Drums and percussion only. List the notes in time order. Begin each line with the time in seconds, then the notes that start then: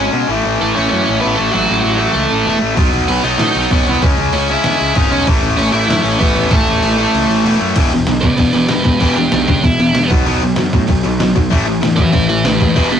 2.77 kick, crash
2.94 crash
3.08 crash
3.24 crash
3.39 snare, crash
3.55 crash
3.71 kick, crash
3.87 crash
4.02 kick, crash
4.17 crash
4.33 crash
4.48 crash
4.64 snare, crash
4.80 crash
4.95 kick, crash
5.12 crash
5.27 kick, crash
5.43 crash
5.59 crash
5.75 crash
5.90 snare, crash
6.06 crash
6.21 kick, crash
6.36 crash
6.51 kick, crash
6.67 crash
6.83 crash
6.98 crash
7.15 crash
7.31 crash
7.46 crash
7.61 crash
7.76 kick, crash
7.92 crash
8.07 snare, crash
8.23 kick, crash
8.38 kick, crash
8.53 crash
8.69 snare, crash
8.84 kick, crash
9.00 kick, crash
9.16 crash
9.32 snare, crash
9.48 kick, crash
9.64 kick, crash
9.80 crash
9.95 snare, crash
10.11 kick, crash
10.27 crash
10.42 crash
10.56 snare, crash
10.73 kick, crash
10.88 kick, crash
11.04 crash
11.20 snare, crash
11.36 kick, crash
11.52 kick, crash
11.67 crash
11.83 snare, crash
11.98 kick, crash
12.13 kick, crash
12.29 crash
12.45 snare, crash
12.60 kick, crash
12.76 kick, crash
12.92 crash